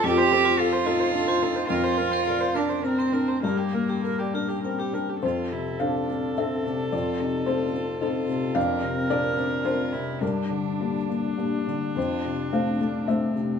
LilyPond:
<<
  \new Staff \with { instrumentName = "Vibraphone" } { \time 3/4 \key f \major \tempo 4 = 107 f'16 r8 f'16 a'16 c''16 f'16 a'16 ees''16 f'16 ees''16 r16 | bes'16 r8 bes'16 d''16 f''16 bes'16 d''16 bes''16 bes'16 bes''16 r16 | g'16 r8 g'16 bes'16 d''16 g'16 bes'16 g''16 g'16 g''16 r16 | r2. |
r2. | r2. | r2. | r2. | }
  \new Staff \with { instrumentName = "Viola" } { \time 3/4 \key f \major a'16 c''16 a'16 c''16 a'16 c''16 a'16 c''16 a'16 c''16 a'16 c''16 | bes'16 c''16 bes'16 c''16 bes'16 c''16 bes'16 c''16 bes'16 c''16 bes'16 c''16 | bes'16 g'16 bes'16 g'16 bes'16 g'16 bes'16 g'16 bes'16 g'16 bes'16 g'16 | a'2.~ |
a'2. | bes'2. | d'2.~ | d'2. | }
  \new Staff \with { instrumentName = "Cello" } { \time 3/4 \key f \major g'4 f'2 | f'4. d'8 c'4 | bes2 r4 | f'8 e'8 d'4 c'8 d'8 |
f'8 ees'8 f'4 f'4 | d'8 c'8 bes8 d'8 f'8 e'8 | d'2~ d'8 r8 | f'4 c'8 d'8 c'4 | }
  \new Staff \with { instrumentName = "Felt piano" } { \time 3/4 \key f \major << { r2. | r2. | r2. | c''4 f''4 e''4 |
d''4 c''4. r8 | f''4 d''4 c''4 | bes'2~ bes'8 r8 | c''4 f''4 e''4 | } \\ { f,8 c'8 a'8 ees'8 d'8 ees'8 | f,8 c'8 bes'8 d'8 c'8 d'8 | g,8 bes8 bes'8 d'8 c'8 d'8 | f,8 c8 <c' d' a'>8 c'8 <c' d' a'>8 c8 |
f,8 c8 <c' ees' a'>8 c'8 <c' ees' a'>8 c8 | f,8 c8 <c' d' bes'>8 c'8 <c' d' bes'>8 c8 | g,8 d8 <bes d' g'>8 bes8 <bes d' g'>8 d8 | f,8 c8 <a d' c''>8 a8 <a d' c''>8 c8 | } >> }
>>